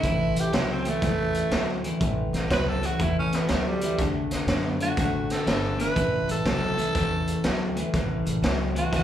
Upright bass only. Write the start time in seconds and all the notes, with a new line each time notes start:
0.03 A1
0.36 A1
0.53 C#2
1.02 E2
1.51 D2
2.01 A1
2.33 A1
2.50 C#2
3.00 E2
3.50 D2
3.98 D2
4.31 D2
4.47 F#2
4.97 A2
5.46 G1
5.96 A1
6.28 A1
6.45 C#2
6.95 E2
7.44 D2
7.94 A1
8.26 A1
8.42 C#2
8.93 E2